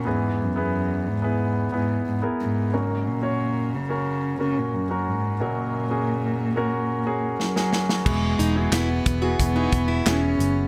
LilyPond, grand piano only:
<<
  \new Staff \with { instrumentName = "Grand piano" } { \time 4/4 \key e \lydian \tempo 4 = 90 <b e' gis' b'>8. <b e' gis' b'>8. r16 <b e' gis' b'>8. <b e' gis' b'>8. <b e' gis' ais'>8. | <ais cis' fis' ais'>8. <ais cis' fis' cis''>8. r16 <ais cis' fis' ais'>8. <ais cis' fis' ais'>8. <ais cis' fis' ais'>8. | <ais cis' fis' ais'>8. <ais cis' fis' gis'>8. r16 <ais cis' fis' ais'>8. <ais cis' fis' gis'>8. <ais cis' fis' gis'>8. | <b e' fis' gis'>8. <b e' fis' gis'>8. r16 <b e' fis' gis'>8 <b e' fis' gis'>8. <b e' fis' gis'>8. r16 | }
  \new Staff \with { instrumentName = "Grand piano" } { \clef bass \time 4/4 \key e \lydian <e, e>1 | <fis,, fis,>1 | <fis,, fis,>1 | e4. r2 r8 | }
>>